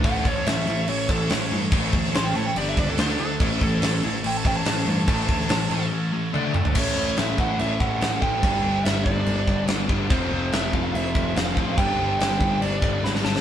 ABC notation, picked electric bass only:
X:1
M:4/4
L:1/8
Q:1/4=143
K:Amix
V:1 name="Picked electric bass" clef=bass
A,,, A,,, A,,, A,,, A,,, A,,, A,,, G,, | A,,, D,, A,,, A,,, G,,, C,, D,, D,, | A,,, A,,, A,,, A,,, A,,, A,,, A,,, G,, | A,,, D,, A,,, A,,, z4 |
A,,, A,,, A,,, A,,, A,,, A,,, A,,, A,,, | G,,, G,,, G,,,2 G,,, G,,, G,,,2 | =F,,, F,,, F,,, F,,, F,,, F,,, F,,, A,,, | G,,, G,,, G,,,2 G,,, G,,, ^G,,,2 |]